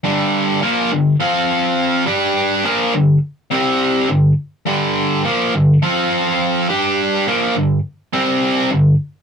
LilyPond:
\new Staff \with { instrumentName = "Distorted electric guitar" } { \clef bass \time 4/4 \key f \lydian \tempo 4 = 104 <g, d g>4 <bes, f bes>8 <g, d>8 <f c' f'>4. <g d' g'>8~ | <g d' g'>8 <bes, f bes>8 <g, d>8 r8 <c g c'>4 <g, d>8 r8 | <g, d g>4 <bes, f bes>8 <g, d>8 <f c' f'>4. <g d' g'>8~ | <g d' g'>8 <bes, f bes>8 <g, d>8 r8 <c g c'>4 <g, d>8 r8 | }